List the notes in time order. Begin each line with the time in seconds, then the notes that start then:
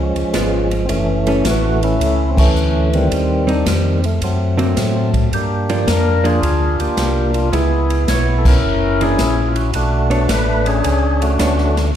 Already playing: C#2 F3 G#3 C#4
0.15 C#2, ride
0.34 G#1 G#3 B3 F4, kick, snare, hi-hat pedal, ride
0.71 ride
0.85 F#1 E3 C4 C#4, kick, ride
0.89 A3
1.27 E3 A3 C#4, ride
1.44 A1 F#4, kick, snare, hi-hat pedal, ride
1.83 A3 C#4 E4, ride
2.00 C#2, kick, ride
2.30 C4
2.37 E3 A3 C#4, kick, crash
2.55 D2, hi-hat pedal
2.93 D#3 G3 C4, ride
3.11 D#2, kick, ride
3.47 G3 C4 D4 D#4, ride
3.66 F2 C4, kick, snare, hi-hat pedal, ride
4.04 A3, ride
4.21 F#2 F#3 A3 C4, kick, ride
4.57 D3 A#3 C4 F#4, ride
4.76 A2, kick, snare, hi-hat pedal, ride
5.14 kick, ride
5.32 G2 A#3 D4 G4, kick, ride
5.69 F3 A#3 D4, ride
5.87 F2 A#4, kick, snare, hi-hat pedal, ride
6.24 F3 A#3 D4 F4 G#4, ride
6.42 D2, kick, ride
6.79 D2 A#3 D4 G4, ride
6.97 C2, kick, snare, hi-hat pedal, ride
7.34 F4, ride
7.52 C#2 G#3 B3 E4 G#4, kick, ride
7.90 ride
8.08 B1 C#5, kick, snare, hi-hat pedal, ride
8.38 A4
8.45 C#4 E4 A#4, kick, crash
8.64 F#1
9.01 E3 A#3 C#4 D4 E4 G#4, ride
9.18 A#1, kick, snare, hi-hat pedal, ride
9.48 F4
9.56 F#4, ride
9.73 B1 A3 D4 F#4, kick, ride
10.10 B3 D4 A4 C#5, ride
10.29 A1 B4, kick, snare, hi-hat pedal, ride
10.66 C#4 D4 G#4, ride
10.84 C#2, kick, ride
11.22 A3 D4 F#4, ride
11.39 D2 B3 D4 A4 C#5, kick, snare, hi-hat pedal, ride
11.58 snare
11.77 D4, snare, ride